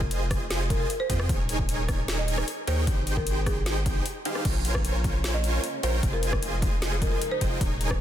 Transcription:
Already playing: sub bass F1, supersaw synth F4 G#4 C5 D#5 G#5
0.01 kick
0.11 closed hi-hat
0.31 kick, cross-stick, closed hi-hat
0.51 snare, closed hi-hat
0.70 marimba A#4, kick, closed hi-hat
0.80 marimba A#4
0.90 closed hi-hat
1.00 marimba C5
1.10 sub bass F2, supersaw synth F4 G#4 C5 D#5 G5, marimba C5, kick, closed hi-hat
1.20 cross-stick
1.29 sub bass D#1, supersaw synth D#4 G#4 A#4 C#5 G#5, kick, closed hi-hat
1.49 closed hi-hat
1.59 kick
1.69 closed hi-hat
1.89 kick, cross-stick, closed hi-hat
2.08 snare, closed hi-hat
2.18 marimba D#5
2.28 closed hi-hat
2.38 cross-stick
2.48 closed hi-hat
2.67 sub bass D#2, supersaw synth D#4 G#4 A#4 C#5 G5, marimba C5, closed hi-hat
2.87 sub bass G#1, supersaw synth D#4 G4 G#4 C5 G5, kick, closed hi-hat
3.07 closed hi-hat
3.17 marimba A#4, kick
3.27 closed hi-hat
3.46 marimba G#4, kick, cross-stick, closed hi-hat
3.66 snare, closed hi-hat
3.86 kick, closed hi-hat
4.06 closed hi-hat
4.25 supersaw synth D#4 G4 G#4 C5 F5, closed hi-hat
4.35 cross-stick
4.45 sub bass A#1, string section C#3 G#3 A#3 C#4, supersaw synth F4 A#4 C5 C#5 G#5, kick, closed hi-hat, crash
4.65 closed hi-hat
4.75 kick, cross-stick
4.85 closed hi-hat
5.04 kick, closed hi-hat
5.24 snare, closed hi-hat
5.34 marimba D#5
5.44 closed hi-hat
5.64 closed hi-hat
5.83 sub bass A#1, supersaw synth F4 A#4 C5 C#5 G5, marimba C5, closed hi-hat
6.03 sub bass F1, string section F3 D#4, supersaw synth F4 G#4 C5 D#5 G#5, kick, closed hi-hat
6.13 marimba A#4
6.23 closed hi-hat
6.33 kick, cross-stick
6.43 closed hi-hat
6.62 kick, closed hi-hat
6.82 snare, closed hi-hat
7.02 marimba A#4, kick, closed hi-hat
7.12 marimba A#4
7.22 closed hi-hat
7.32 marimba C5
7.41 sub bass F1, supersaw synth F4 G#4 C5 D#5 G5, marimba C5, kick, closed hi-hat
7.61 sub bass D#1, string section C#3 A#3, supersaw synth D#4 G#4 A#4 C#5 G#5, kick, closed hi-hat
7.81 closed hi-hat
7.91 kick, cross-stick

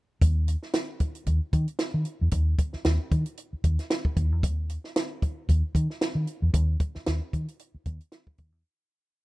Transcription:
0.22 fingered electric bass D#2, kick, closed hi-hat
0.48 closed hi-hat
0.63 snare
0.73 snare, closed hi-hat
1.00 kick, closed hi-hat
1.15 closed hi-hat
1.26 fingered electric bass D#2, kick, closed hi-hat
1.53 fingered electric bass D#3, kick, closed hi-hat
1.68 closed hi-hat
1.79 snare, closed hi-hat
1.94 fingered electric bass D#3
2.05 closed hi-hat
2.21 fingered electric bass E2
2.31 fingered electric bass D#2, kick, closed hi-hat
2.58 kick, closed hi-hat
2.73 muted fingered electric bass stroke, snare
2.85 fingered electric bass D#2, snare, closed hi-hat
3.12 fingered electric bass D#3, kick, closed hi-hat
3.26 closed hi-hat
3.37 closed hi-hat
3.53 muted fingered electric bass stroke
3.64 fingered electric bass D#2, kick, closed hi-hat
3.79 snare, closed hi-hat
3.90 snare, closed hi-hat
4.05 kick
4.16 fingered electric bass D#2, kick, closed hi-hat
4.32 fingered electric bass E2
4.43 fingered electric bass D#2, kick, closed hi-hat
4.69 closed hi-hat
4.84 snare
4.96 snare, closed hi-hat
5.22 kick, closed hi-hat
5.49 fingered electric bass D#2, kick, closed hi-hat
5.75 fingered electric bass D#3, kick, closed hi-hat
5.90 snare
6.01 snare, closed hi-hat
6.15 fingered electric bass D#3
6.27 closed hi-hat
6.42 fingered electric bass E2
6.53 fingered electric bass D#2, kick, closed hi-hat
6.80 kick, closed hi-hat
6.95 muted fingered electric bass stroke, snare
7.06 fingered electric bass D#2, snare, closed hi-hat
7.33 fingered electric bass D#3, kick, closed hi-hat
7.48 closed hi-hat
7.59 closed hi-hat
7.74 muted fingered electric bass stroke
7.86 fingered electric bass D#2, kick, closed hi-hat
8.00 closed hi-hat
8.12 snare, closed hi-hat
8.27 kick
8.38 fingered electric bass D#2, kick, closed hi-hat
8.52 fingered electric bass E2

